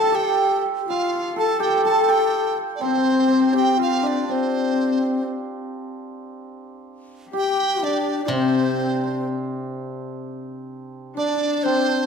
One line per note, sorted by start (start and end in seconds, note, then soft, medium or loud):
0.00 1.09 D4 medium
0.00 0.90 F4 medium
0.00 0.11 G4 medium
0.00 0.16 A4 medium
0.00 0.64 A4 medium
0.00 0.17 A5 medium
0.07 1.36 A4 medium
0.12 1.59 G4 medium
0.12 0.64 G4 medium
0.12 0.64 G5 medium
0.80 0.90 G4 medium
0.88 1.39 F4 medium
0.88 1.35 F4 medium
0.88 3.79 F4 medium
0.88 1.34 F5 medium
1.35 1.62 A4 medium
1.35 1.85 A4 medium
1.35 2.57 A4 medium
1.35 1.60 A5 medium
1.60 2.08 G4 medium
1.60 1.86 G4 medium
1.60 1.84 G5 medium
1.84 2.57 A4 medium
1.84 4.77 A4 medium
1.84 2.11 A5 medium
2.08 3.55 G4 medium
2.08 2.58 G5 medium
2.75 2.83 D5 medium
2.80 3.55 C4 medium
2.80 2.90 C4 medium
2.80 4.24 C4 medium
2.80 3.54 C5 medium
2.90 2.97 C4 medium
2.97 3.03 C4 medium
3.04 3.11 C4 soft
3.11 3.19 C4 medium
3.19 3.27 C4 soft
3.28 3.32 C4 medium
3.33 3.39 C4 soft
3.40 4.28 C4 medium
3.53 3.79 G4 medium
3.53 6.69 G4 medium
3.53 3.78 G5 medium
3.78 4.05 F4 medium
3.78 7.16 F4 medium
3.82 4.08 F5 medium
4.03 7.76 D4 medium
4.03 4.28 D4 medium
4.03 4.33 D5 medium
4.29 5.26 C4 medium
4.29 8.29 C4 medium
4.29 5.26 C4 medium
4.29 5.31 C5 medium
7.31 8.30 G4 medium
7.31 7.85 G4 medium
7.31 10.47 G4 medium
7.38 7.85 G5 medium
7.83 11.17 D4 medium
7.83 8.24 D4 medium
7.83 8.24 D5 medium
8.25 11.16 C3 medium
8.25 9.25 C4 medium
8.25 8.32 D4 soft
8.25 8.35 D5 soft
8.31 9.02 C4 medium
8.31 9.03 C4 medium
8.31 9.28 C5 medium
9.03 9.25 C4 medium
9.03 11.65 C4 medium
11.16 12.06 D4 medium
11.16 11.67 D4 medium
11.16 11.65 D5 medium
11.63 12.06 C4 medium
11.63 12.06 C5 medium